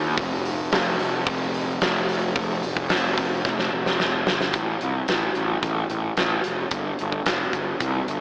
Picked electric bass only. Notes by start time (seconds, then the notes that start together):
Already playing: D#2
0.18 F1
0.72 F1
0.99 F1
1.27 F1
1.82 F1
2.36 F1
2.65 F1
2.92 F1
3.17 F1
3.45 F1
3.72 F1
4.01 F1
4.27 G1
4.54 A1
4.82 C2
5.09 A1
5.36 A1
5.63 A1
5.90 A1
6.18 A1
6.46 F1
6.72 G1
7.00 G1
7.27 F1
7.53 G1
7.81 C2
8.08 G1